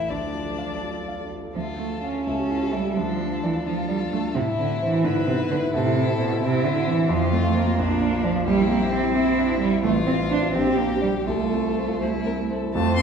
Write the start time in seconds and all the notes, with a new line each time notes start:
Already playing: A1 E4 E5
0.00 A4
0.10 D2 F3 D4 D5
0.21 A4
0.35 F4
0.47 A4
0.58 F5
0.71 A4
0.83 F4
0.96 A4
1.08 F5
1.20 A4
1.32 F4
1.44 A4
1.55 D2 F3 F4 A4
1.67 A4
1.79 A3 F4
1.91 A4
2.02 C#4 F5
2.15 A4
2.26 C#2 E4 A4
2.39 G4
2.49 E4 F4
2.62 G4
2.73 G3 E4 E5
2.85 G4
2.97 D2 F3 D4 A4
3.08 F4
3.20 D4
3.31 F4
3.43 E3 D5
3.55 F4
3.66 F3 D4 F4 A4
3.78 F4
3.88 G3 D5
4.00 F4
4.12 A3 D4
4.23 F4
4.35 A2 C3 E4
4.46 E4
4.58 D3 C4
4.70 E4
4.82 E3 C5
4.94 E4
5.04 G#2 D3 E4 B4
5.17 E4
5.27 C3 B3
5.39 E4
5.51 D3 B4
5.63 E4
5.73 A2 C3 E4 A4
5.85 E4
5.96 C4
6.07 E4
6.18 B2 C5
6.30 E4
6.41 C3 C4 E4
6.53 E4
6.64 D3 C5
6.76 E4
6.87 E3 C4
6.99 E4
7.09 F2 F3 F4
7.21 F4
7.32 A3 C4
7.44 F4
7.55 A#3 C5
7.67 F4
7.78 A#1 D4
7.90 F4
8.01 D4
8.13 F4
8.24 F3 D5
8.36 F4
8.46 A#1 G3 E4 G4
8.59 E4
8.70 A#3 C4
8.81 E4
8.92 C4 C5
9.03 E4
9.15 C4 E4
9.26 E4
9.38 D4 C5
9.50 E4
9.61 G3 C4 E4
9.73 E4
9.83 A1 A3 F4
9.96 F4
10.07 C4
10.19 F4
10.31 D4 C5
10.42 F4
10.54 A#1 C4 G4
10.67 G4
10.78 A#3 D4
10.90 G4
11.02 G3 D5
11.15 G4
11.27 C2 A3 F4 A4
11.40 F4
11.52 C4
11.64 F4
11.77 C5
11.89 F4
12.01 C2 E4 C5
12.13 E4
12.25 C4 A#4
12.38 E4
12.50 A4 C5
12.63 E4
12.74 F2 A3 C4 F4 A4 C5 A5
12.96 C4 C6